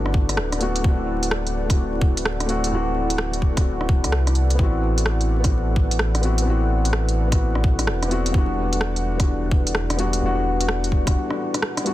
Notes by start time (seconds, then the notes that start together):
Already playing: G1 A3 B3 D4 E4 F#4 A4 B4 D5 F#5
0.06 cross-stick
0.14 kick
0.29 cross-stick, closed hi-hat
0.37 D1, cross-stick
0.52 cross-stick, closed hi-hat
0.59 A3 B3 D4 F#4, closed hi-hat
0.76 closed hi-hat
0.81 D1 A3 C4, kick
0.86 E4 F#4
1.23 closed hi-hat
1.31 cross-stick
1.47 closed hi-hat
1.65 A3 C4
1.70 E4 F#4, kick, cross-stick, closed hi-hat
2.01 kick
2.17 closed hi-hat
2.25 cross-stick
2.40 cross-stick, closed hi-hat
2.46 A3 C4 E4, closed hi-hat
2.50 F#4
2.64 A3, closed hi-hat
2.69 D1 C4 E4
2.75 F#4
3.10 closed hi-hat
3.18 cross-stick
3.33 closed hi-hat
3.42 kick
3.52 A3 C4
3.57 E4 F#4, kick, cross-stick, closed hi-hat
3.81 cross-stick
3.89 kick
4.04 D2, cross-stick, closed hi-hat
4.12 C2, cross-stick
4.27 cross-stick, closed hi-hat
4.35 closed hi-hat
4.50 closed hi-hat
4.55 B3 C4
4.59 A1 E4 F#4, kick
4.98 closed hi-hat
5.06 cross-stick
5.21 closed hi-hat
5.40 B3 C4
5.44 E4, kick, cross-stick, closed hi-hat
5.48 F#4
5.76 kick
5.91 closed hi-hat
5.99 cross-stick
6.15 cross-stick, closed hi-hat
6.21 B3 C4 E4 F#4, closed hi-hat
6.38 closed hi-hat
6.42 B3 C4
6.46 A1 E4 F#4
6.85 closed hi-hat
6.93 cross-stick
7.09 closed hi-hat
7.27 B3 C4
7.32 E4 F#4, kick, cross-stick, closed hi-hat
7.55 cross-stick
7.64 kick
7.79 cross-stick, closed hi-hat
7.87 E1, cross-stick
8.03 cross-stick, closed hi-hat
8.08 B3 C4 E4, closed hi-hat
8.12 F#4
8.26 G3, closed hi-hat
8.32 E1 B3 D4, kick
8.37 F#4
8.73 closed hi-hat
8.81 cross-stick
8.96 closed hi-hat
9.15 G3 B3
9.20 D4 F#4, kick, cross-stick, closed hi-hat
9.51 kick
9.67 closed hi-hat
9.75 cross-stick
9.90 cross-stick, closed hi-hat
9.96 G3 B3 D4 F#4, closed hi-hat
10.13 closed hi-hat
10.18 E1 G3 B3
10.23 D4 F#4
10.61 closed hi-hat
10.68 cross-stick
10.84 closed hi-hat
10.92 kick
11.02 G3 B3
11.07 D4 F#4, kick, cross-stick, closed hi-hat
11.30 cross-stick
11.54 cross-stick, closed hi-hat
11.62 cross-stick
11.77 cross-stick, closed hi-hat
11.83 G3 B3 D4 F#4, closed hi-hat